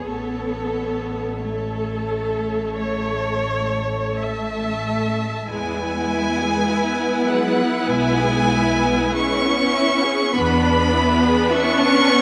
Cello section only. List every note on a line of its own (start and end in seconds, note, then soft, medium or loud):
0.08 1.40 B3 medium
1.41 4.14 A3 soft
4.15 5.45 A3 medium
5.49 7.28 G#3 medium
7.29 7.89 F#3 medium
7.88 9.15 G#3 medium
9.15 10.31 C#4 medium
10.33 11.50 B3 medium
11.50 12.22 C#4 loud